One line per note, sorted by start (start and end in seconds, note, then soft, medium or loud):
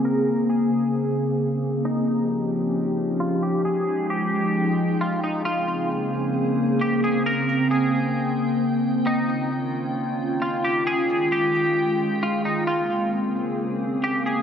0.00 1.81 C#3 medium
0.00 1.81 A#3 medium
0.00 1.81 C4 medium
0.00 1.81 G#4 medium
0.05 0.47 A#4 loud
0.50 1.36 G#4 medium
1.85 5.42 F3 medium
1.85 3.64 C#4 medium
1.85 5.42 D#4 medium
1.85 2.27 D#4 loud
1.85 3.64 G4 medium
3.20 3.42 F4 medium
3.43 3.64 G4 medium
3.65 5.44 G#3 medium
3.65 4.08 G#4 loud
3.65 5.44 G5 medium
4.10 4.96 G4 medium
5.01 5.22 F4 medium
5.24 5.45 D#4 medium
5.45 9.03 C#3 medium
5.45 9.03 A#3 medium
5.45 9.03 C4 medium
5.45 5.88 F4 loud
5.45 7.24 G#4 medium
6.81 7.03 G4 medium
7.04 7.25 G#4 medium
7.26 7.69 A#4 loud
7.26 10.83 G5 medium
7.71 8.57 G#4 medium
9.07 12.64 D#3 medium
9.07 10.85 C#4 medium
9.07 9.49 D#4 loud
9.07 12.64 F4 medium
10.42 10.63 F4 medium
10.64 10.86 G4 medium
10.87 12.66 G#3 medium
10.87 11.29 G#4 loud
10.87 12.66 G5 medium
11.32 12.18 G4 medium
12.23 12.44 F4 medium
12.45 12.67 D#4 medium
12.67 14.42 C#3 medium
12.67 14.42 A#3 medium
12.67 14.42 C4 medium
12.67 13.10 F4 loud
12.67 14.42 G#4 medium
14.04 14.25 G4 medium
14.26 14.42 G#4 medium